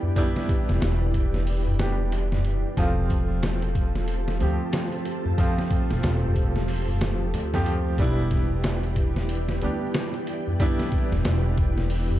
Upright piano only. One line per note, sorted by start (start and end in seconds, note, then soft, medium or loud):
0.00 0.14 G3 medium
0.00 0.14 B3 medium
0.00 0.14 D4 medium
0.00 0.15 G4 medium
0.16 1.76 G3 loud
0.16 1.77 B3 medium
0.16 1.77 D4 medium
0.16 1.77 E4 loud
1.79 2.74 G3 medium
1.79 2.74 B3 medium
1.79 2.75 D4 medium
1.79 2.75 G4 medium
2.78 4.37 F3 medium
2.78 4.38 A3 medium
2.78 4.38 C4 medium
2.78 4.38 F4 loud
4.41 5.35 F3 medium
4.41 5.36 A3 medium
4.41 5.36 C4 medium
4.41 5.36 G4 medium
5.38 6.98 F3 medium
5.38 6.98 A3 medium
5.38 6.98 C4 medium
5.38 6.99 F4 loud
7.54 7.96 F3 medium
7.54 7.96 A3 medium
7.54 7.97 C4 medium
7.54 7.97 G4 loud
7.99 9.59 G3 loud
7.99 9.59 B3 medium
7.99 9.60 D4 medium
7.99 9.60 E4 loud
9.62 10.57 G3 medium
9.62 10.57 B3 medium
9.62 10.58 D4 medium
9.62 10.58 G4 medium
10.60 12.20 G3 loud
10.60 12.20 B3 medium
10.60 12.20 D4 medium
10.60 12.20 E4 loud